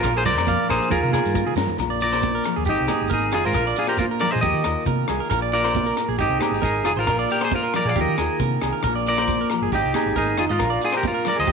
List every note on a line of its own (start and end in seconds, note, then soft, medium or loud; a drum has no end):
0.00 0.13 F4 medium
0.00 0.14 A#4 medium
0.00 0.24 A#4 medium
0.00 muted conga soft
0.00 low agogo medium
0.00 shekere medium
0.04 0.37 A#1 medium
0.04 0.92 A#2 medium
0.04 kick medium
0.04 cross-stick medium
0.04 closed hi-hat soft
0.17 0.25 G#4 medium
0.17 0.26 C5 medium
0.25 0.39 G#3 medium
0.25 0.66 A#4 medium
0.25 0.46 C5 medium
0.25 0.70 D5 loud
0.25 closed hi-hat soft
0.25 muted conga soft
0.25 low conga medium
0.25 shekere medium
0.37 0.54 F2 medium
0.37 0.92 A#3 medium
0.37 cross-stick medium
0.37 closed hi-hat soft
0.37 low agogo medium
0.37 shekere soft
0.47 0.90 F3 medium
0.47 0.69 F5 medium
0.47 kick medium
0.47 closed hi-hat soft
0.47 high conga medium
0.47 shekere medium
0.69 0.78 A#1 medium
0.69 0.89 D4 medium
0.69 0.90 G#4 medium
0.69 0.90 A#4 medium
0.69 0.90 C5 medium
0.69 cross-stick medium
0.69 closed hi-hat soft
0.69 low agogo medium
0.69 shekere medium
0.81 closed hi-hat soft
0.81 shekere soft
0.90 1.00 D#2 loud
0.90 1.79 D#3 medium
0.90 1.53 F4 medium
0.90 1.02 G#4 medium
0.90 1.53 A#4 medium
0.90 kick medium
0.90 closed hi-hat soft
0.90 muted conga soft
0.90 low conga medium
0.90 shekere medium
1.03 1.20 C3 medium
1.03 1.13 A#4 medium
1.11 1.34 G#4 medium
1.11 muted steel-string acoustic guitar stroke medium
1.11 cross-stick medium
1.11 closed hi-hat soft
1.11 high conga medium
1.11 low agogo medium
1.11 shekere medium
1.25 1.42 G2 medium
1.25 closed hi-hat medium
1.25 shekere soft
1.34 1.77 A#3 medium
1.34 1.46 A#4 medium
1.34 kick loud
1.34 high tom soft
1.34 high conga medium
1.34 shekere medium
1.45 1.56 G#4 medium
1.45 mid tom soft
1.45 high conga medium
1.56 1.66 G2 medium
1.56 1.80 F4 medium
1.56 1.78 A#4 medium
1.56 snare medium
1.56 low conga medium
1.56 low agogo medium
1.56 shekere loud
1.67 floor tom medium
1.67 low conga medium
1.67 shekere soft
1.78 2.38 A#1 medium
1.78 2.67 A#2 medium
1.78 2.68 A#3 medium
1.78 2.65 D4 medium
1.78 2.02 F4 medium
1.78 muted clean electric guitar stroke medium
1.78 kick medium
1.78 cross-stick medium
1.78 muted conga soft
1.78 low agogo medium
1.78 shekere medium
1.90 2.11 D5 medium
2.00 2.68 F4 medium
2.00 2.43 A#4 medium
2.00 2.43 D5 medium
2.00 closed hi-hat soft
2.00 shekere medium
2.12 2.33 C5 medium
2.12 cross-stick medium
2.12 low agogo medium
2.22 kick medium
2.22 muted conga soft
2.22 high conga medium
2.22 shekere medium
2.35 2.56 A#4 medium
2.44 2.65 F3 medium
2.44 cross-stick medium
2.44 closed hi-hat soft
2.44 low agogo medium
2.44 shekere medium
2.56 2.65 D#2 medium
2.56 2.65 G#4 medium
2.65 2.75 G#1 medium
2.65 3.53 G#2 medium
2.65 3.54 C4 medium
2.65 3.09 D#4 medium
2.65 2.87 G4 medium
2.65 kick medium
2.65 muted conga soft
2.65 shekere medium
2.69 2.89 D#4 medium
2.69 3.10 G4 medium
2.80 2.88 C2 medium
2.88 3.53 D#4 medium
2.88 3.09 G#4 medium
2.88 cross-stick medium
2.88 closed hi-hat soft
2.88 high conga medium
2.88 low agogo medium
2.88 shekere medium
3.01 3.09 G#1 medium
3.08 3.35 G#1 medium
3.08 3.31 A#4 medium
3.08 kick medium
3.08 high conga medium
3.08 shekere medium
3.13 3.33 D#4 soft
3.13 3.33 G#4 medium
3.31 3.43 F1 medium
3.31 3.55 D#3 medium
3.31 3.44 F4 medium
3.31 3.44 G#4 medium
3.31 3.46 G#4 medium
3.31 cross-stick medium
3.31 closed hi-hat soft
3.31 low agogo medium
3.31 shekere medium
3.45 3.57 G#2 medium
3.45 3.75 F4 medium
3.45 3.76 A#4 medium
3.45 3.55 C5 medium
3.53 3.72 A#1 medium
3.53 4.44 A#2 medium
3.53 5.08 A#3 medium
3.53 3.66 A#4 medium
3.53 kick medium
3.53 cross-stick medium
3.53 low agogo medium
3.53 shekere medium
3.58 4.42 D4 medium
3.58 3.77 F4 medium
3.67 3.88 D5 medium
3.75 4.42 F4 medium
3.75 3.88 F4 medium
3.75 3.89 G#4 medium
3.75 closed hi-hat soft
3.75 shekere medium
3.87 3.98 G4 medium
3.87 3.97 A#4 medium
3.87 4.10 C5 medium
3.87 cross-stick medium
3.87 low agogo medium
3.97 4.05 F4 medium
3.97 4.04 A#4 medium
3.97 kick medium
3.97 muted conga soft
3.97 high conga medium
3.97 shekere medium
4.11 4.32 A#4 medium
4.19 4.41 F3 medium
4.19 4.31 A#4 medium
4.19 4.31 D5 medium
4.19 cross-stick medium
4.19 closed hi-hat soft
4.19 low conga medium
4.19 low agogo medium
4.19 shekere medium
4.31 4.42 G#4 medium
4.31 4.42 C5 medium
4.31 4.40 D#5 medium
4.35 4.42 A#2 medium
4.41 4.52 D#2 loud
4.41 5.31 D#3 medium
4.41 5.29 D#4 medium
4.41 4.65 F4 medium
4.41 4.64 G4 medium
4.41 4.84 A#4 medium
4.41 4.83 D#5 medium
4.41 kick medium
4.41 muted conga soft
4.41 high conga medium
4.41 shekere medium
4.54 4.62 D#3 medium
4.64 4.74 D#2 medium
4.64 5.30 F4 medium
4.64 muted clean electric guitar stroke medium
4.64 cross-stick medium
4.64 closed hi-hat soft
4.64 muted conga soft
4.64 low agogo medium
4.64 shekere medium
4.86 5.03 C3 medium
4.86 5.08 A#4 medium
4.86 kick medium
4.86 high conga medium
4.86 shekere medium
5.08 5.18 C2 medium
5.08 5.30 A#3 medium
5.08 5.20 G#4 medium
5.08 cross-stick medium
5.08 closed hi-hat medium
5.08 low agogo medium
5.08 shekere medium
5.20 5.29 A#4 medium
5.30 5.90 A#1 medium
5.30 5.73 A#2 medium
5.30 6.20 A#3 medium
5.30 6.17 D4 medium
5.30 5.52 F4 medium
5.30 5.42 A#4 medium
5.30 kick medium
5.30 cross-stick medium
5.30 muted conga soft
5.30 low agogo medium
5.30 shekere loud
5.42 5.64 D5 medium
5.53 6.19 F4 medium
5.53 5.95 A#4 medium
5.53 5.94 D5 medium
5.53 closed hi-hat soft
5.53 shekere medium
5.64 5.86 C5 medium
5.64 cross-stick medium
5.64 low agogo medium
5.74 5.96 C3 medium
5.74 kick medium
5.74 muted conga soft
5.74 high conga medium
5.74 shekere medium
5.86 6.08 A#4 medium
5.97 6.19 A#2 medium
5.97 cross-stick medium
5.97 closed hi-hat soft
5.97 low agogo medium
5.97 shekere medium
6.08 6.17 A#1 medium
6.08 6.18 G#4 medium
6.18 6.28 G#1 medium
6.18 7.05 G#2 medium
6.18 6.40 C4 medium
6.18 6.61 D#4 medium
6.18 6.41 D#4 medium
6.18 6.40 G4 medium
6.18 6.64 G4 medium
6.18 kick medium
6.18 shekere medium
6.29 6.38 C2 medium
6.40 6.54 C4 medium
6.40 6.62 G#4 medium
6.40 cross-stick medium
6.40 closed hi-hat soft
6.40 muted conga soft
6.40 high conga medium
6.40 low agogo medium
6.40 shekere medium
6.51 6.60 G#1 medium
6.51 7.08 D#4 medium
6.62 6.84 G#1 medium
6.62 6.84 D#4 soft
6.62 6.85 G#4 medium
6.62 6.84 A#4 medium
6.62 kick medium
6.62 high conga medium
6.62 shekere medium
6.84 6.94 F1 medium
6.84 7.08 D#3 medium
6.84 6.91 F4 medium
6.84 6.96 G#4 medium
6.84 6.92 G#4 medium
6.84 cross-stick medium
6.84 closed hi-hat soft
6.84 low agogo medium
6.84 shekere medium
6.96 7.07 A1 medium
6.96 7.28 F4 medium
6.96 7.07 C5 medium
7.00 7.30 A#4 medium
7.07 7.24 A#1 medium
7.07 7.96 A#2 medium
7.07 8.68 A#3 medium
7.07 7.94 D4 medium
7.07 7.30 F4 medium
7.07 7.19 A#4 medium
7.07 kick medium
7.07 cross-stick medium
7.07 muted conga soft
7.07 low agogo medium
7.07 shekere medium
7.19 7.40 D5 medium
7.30 7.97 F4 medium
7.30 7.42 G4 medium
7.30 7.42 A#4 medium
7.30 closed hi-hat soft
7.30 shekere medium
7.41 7.53 G#4 medium
7.41 7.62 C5 medium
7.41 7.54 C5 medium
7.41 cross-stick medium
7.41 low agogo medium
7.51 7.74 F4 medium
7.51 kick medium
7.51 muted conga soft
7.51 high conga medium
7.51 shekere medium
7.56 7.76 A#4 medium
7.64 7.85 A#4 medium
7.74 7.93 F3 medium
7.74 7.86 A#4 medium
7.74 7.89 D5 medium
7.74 cross-stick medium
7.74 closed hi-hat soft
7.74 low conga medium
7.74 low agogo medium
7.74 shekere medium
7.85 7.93 A#2 medium
7.85 7.95 G#4 medium
7.85 7.97 D5 medium
7.89 8.01 F5 medium
7.96 8.05 D#2 medium
7.96 8.85 D#3 medium
7.96 8.18 F4 medium
7.96 8.17 G4 medium
7.96 muted steel-string acoustic guitar stroke medium
7.96 kick medium
7.96 muted conga soft
7.96 high conga medium
7.96 shekere medium
8.01 8.40 A#4 medium
8.01 8.43 D#5 medium
8.09 8.16 D#3 medium
8.18 8.27 D#2 medium
8.18 8.85 F4 medium
8.18 8.39 G#4 medium
8.18 cross-stick medium
8.18 closed hi-hat soft
8.18 muted conga soft
8.18 low agogo medium
8.18 shekere medium
8.40 8.57 C3 medium
8.40 8.63 D3 medium
8.40 8.61 A#4 medium
8.40 kick medium
8.40 high conga medium
8.40 shekere medium
8.61 8.71 C2 medium
8.61 8.85 C3 medium
8.61 8.73 G#4 medium
8.61 cross-stick medium
8.61 closed hi-hat medium
8.61 low agogo medium
8.61 shekere medium
8.73 8.83 A#4 medium
8.83 9.43 A#1 medium
8.83 8.95 A#4 medium
8.83 kick medium
8.83 cross-stick medium
8.83 muted conga soft
8.83 low agogo medium
8.83 shekere medium
8.87 9.74 A#2 medium
8.87 9.73 A#3 medium
8.87 9.72 D4 soft
8.87 9.08 F4 medium
8.96 9.17 D5 medium
9.06 9.74 F4 medium
9.06 9.49 A#4 medium
9.06 9.48 D5 loud
9.06 closed hi-hat soft
9.06 shekere medium
9.18 9.39 C5 medium
9.18 cross-stick medium
9.18 low agogo medium
9.28 kick medium
9.28 muted conga soft
9.28 high conga medium
9.28 shekere medium
9.41 9.61 A#4 medium
9.50 9.71 F3 medium
9.50 cross-stick medium
9.50 closed hi-hat soft
9.50 low agogo medium
9.50 shekere medium
9.62 9.69 G1 medium
9.62 9.72 G#4 medium
9.72 9.81 G#1 loud
9.72 10.58 G#2 medium
9.72 10.59 C4 soft
9.72 10.14 D#4 soft
9.72 9.95 D#4 medium
9.72 9.93 G4 medium
9.72 10.15 G4 medium
9.72 kick medium
9.72 muted conga soft
9.72 shekere medium
9.84 9.92 C2 medium
9.94 10.59 D#4 medium
9.94 10.16 G#4 medium
9.94 cross-stick medium
9.94 closed hi-hat soft
9.94 muted conga soft
9.94 high conga medium
9.94 low agogo medium
9.94 shekere medium
10.06 10.14 G#1 medium
10.15 10.38 G#1 medium
10.15 10.37 D#4 medium
10.15 10.38 G#4 medium
10.15 10.37 A#4 medium
10.15 kick medium
10.15 high conga medium
10.15 shekere loud
10.38 10.47 F1 medium
10.38 10.61 D#3 medium
10.38 10.49 D#4 medium
10.38 10.45 F4 medium
10.38 10.44 G#4 medium
10.38 cross-stick medium
10.38 closed hi-hat soft
10.38 low agogo medium
10.38 shekere medium
10.49 10.62 G#2 medium
10.49 10.81 F4 medium
10.49 10.83 A#4 medium
10.49 10.59 D#5 medium
10.59 10.77 A#1 medium
10.59 11.49 A#2 medium
10.59 11.47 D4 medium
10.59 10.71 A#4 medium
10.59 muted steel-string acoustic guitar stroke medium
10.59 kick medium
10.59 cross-stick medium
10.59 muted conga soft
10.59 low agogo medium
10.59 shekere loud
10.64 10.82 F4 medium
10.70 10.92 D5 medium
10.81 11.49 F4 medium
10.81 10.94 F4 medium
10.81 10.96 G#4 medium
10.81 closed hi-hat soft
10.81 shekere medium
10.92 11.14 C5 medium
10.92 cross-stick medium
10.92 low agogo medium
10.97 11.05 G4 medium
10.97 11.06 A#4 medium
11.03 kick medium
11.03 muted conga soft
11.03 high conga loud
11.03 shekere medium
11.08 11.27 F4 medium
11.08 11.27 A#4 medium
11.14 11.36 A#4 medium
11.25 11.39 D5 medium
11.25 muted steel-string acoustic guitar stroke medium
11.25 cross-stick medium
11.25 closed hi-hat soft
11.25 low conga medium
11.25 low agogo medium
11.25 shekere medium
11.29 11.39 A#4 medium
11.36 11.46 D2 medium
11.36 11.47 G#4 medium
11.36 11.50 D#5 loud
11.41 11.49 C5 medium
11.47 11.52 D#2 loud
11.47 11.52 D#3 medium
11.47 11.52 G4 medium
11.47 kick medium
11.47 muted conga soft
11.47 high conga medium
11.47 shekere medium